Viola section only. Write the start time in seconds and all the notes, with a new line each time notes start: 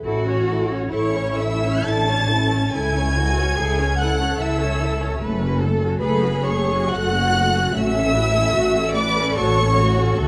0.05 E4 A4
0.27 C#4 C#5
0.48 E4 A4
0.70 C#4 C#5
0.92 E4 A4
1.14 C#4 C#5
1.38 E4 A4
1.62 C#4 C#5
1.86 E4 A4
2.08 C#4 C#5
2.29 E4 A4
2.52 C#4 C#5
2.73 E4 A4
2.95 C#4 C#5
3.15 E4 A4
3.37 C#4 C#5
3.58 E4 A4
3.79 C#4 C#5
4.00 E4 A4
4.20 C#4 C#5
4.39 E4 A4
4.60 C#4 C#5
4.80 E4 A4
5.01 C#4 C#5
5.22 A3 A4
5.42 C#4 F#4
5.63 A3 A4
5.82 C#4 F#4
6.03 A3 A4
6.24 C#4 F#4
6.47 A3 A4
6.70 C#4 F#4
6.93 A3 A4
7.14 C#4 F#4
7.35 A3 A4
7.55 C#4 F#4
7.74 A3 F#4
7.94 C#4 A4
8.15 A3 F#4
8.35 C#4 A4
8.55 A3 F#4
8.75 C#4 A4
8.97 A3 F#4
9.16 C#4 A4
9.36 A3 F#4
9.58 C#4 A4
9.78 A3 F#4
9.98 C#4 A4
10.18 A3 F#4